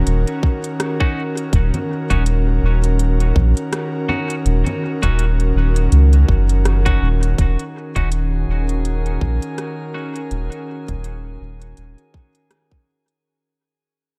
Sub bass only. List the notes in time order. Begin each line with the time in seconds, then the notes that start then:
0.07 D#1
1.53 D#1
2.10 D#1
2.63 D#1
3.36 A#1
4.46 D#1
5.03 D#1
5.55 D#1
5.92 C#2
6.28 F#1
7.02 D#1
7.38 D#1
7.96 D#1
8.48 D#1
9.21 A#1
10.31 D#1
10.89 D#1
11.41 D#1
11.78 D#1